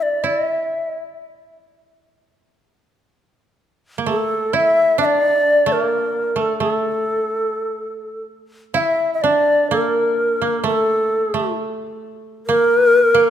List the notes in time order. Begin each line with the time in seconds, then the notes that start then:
Already playing: A#3 D4 E4
0.03 D5
0.24 E4 D5
0.46 E5
3.98 A#3
4.06 A3 A4
4.53 E4 E5
4.98 D4 E5
5.05 D5
5.66 A3 D5
5.72 A#4
5.82 A#3
6.36 A3 A#4
6.41 A4
6.60 A3 A4
8.74 E4 F5
8.79 E5
9.14 E5
9.22 D4 D5
9.71 A#3 A#4
10.42 A#3
10.64 A3 A4
11.34 A3
12.47 A#3 A#4
13.14 A#3